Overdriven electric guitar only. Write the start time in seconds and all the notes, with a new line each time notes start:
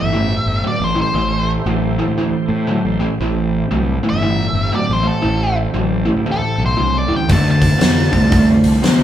Already playing: A2 E3
0.13 A2 E3
0.64 A2 F#3
0.95 A2 E3
1.14 A2 E3
1.66 A2 F#3
1.99 A2 E3
2.18 A2 E3
2.67 A2 F#3
3.00 A2 E3
3.21 A2 E3
3.71 A2 F#3
4.03 A2 E3
4.22 A2 E3
4.72 A2 F#3
5.03 A2 E3
5.22 A2 E3
5.74 A2 F#3
6.05 A2 E3
6.26 A2 E3
6.77 A2 F#3
7.08 A2 E3
7.29 D3 A3
7.78 D3 B3
8.11 D3 A3
8.30 D3 A3
8.82 D3 B3